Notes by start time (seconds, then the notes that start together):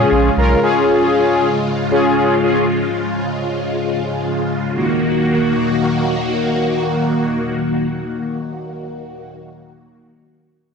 Already playing: C#3 G#3 C#4 F4 G#4
0.12 A#1
0.37 B1 C#4 F4 A#4
0.63 C#4 F4 G#4
1.91 C#4 F4 G#4
2.42 C#4 F4 G#4
4.73 D#3 A#3 F#4